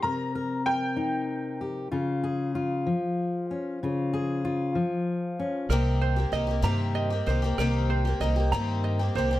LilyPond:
<<
  \new Staff \with { instrumentName = "Upright piano" } { \time 6/8 \key c \phrygian \tempo 4. = 64 bes''4 g''4. r8 | r2. | r2. | r2. |
r2. | }
  \new Staff \with { instrumentName = "Ukulele" } { \time 6/8 \key c \phrygian r2. | r2. | r2. | bes'8 c''8 ees''8 bes''8 ees''8 c''8 |
bes'8 c''8 ees''8 bes''8 ees''8 c''8 | }
  \new Staff \with { instrumentName = "Steel-string acoustic guitar" } { \time 6/8 \key c \phrygian << { bes'8 bes'8 bes'4. g'8 | f'8 aes'8 f'4. des'8 | f'8 aes'8 f'4. des'8 | r2. |
r2. | } \\ { c4. ees'4. | des4. f4. | des4. f4. | r2. |
r2. | } >> }
  \new Staff \with { instrumentName = "Twelve-string acoustic guitar" } { \time 6/8 \key c \phrygian r2. | r2. | r2. | <c ees bes c' g'>8. <bes c' g'>16 <ees bes c' g'>16 <bes c' g'>16 <c ees bes c' g'>8. <bes c' g'>16 <ees bes c' g'>16 <bes c' g'>16 |
<c ees bes c' g'>8. <bes c' g'>16 <ees bes c' g'>16 <bes c' g'>16 <c ees bes c' g'>8. <bes c' g'>16 <ees bes c' g'>16 <bes c' g'>16 | }
  \new Staff \with { instrumentName = "Upright bass" } { \clef bass \time 6/8 \key c \phrygian r2. | r2. | r2. | c,4 c,8 g,4 c,8 |
c,4 c,8 g,4 c,8 | }
>>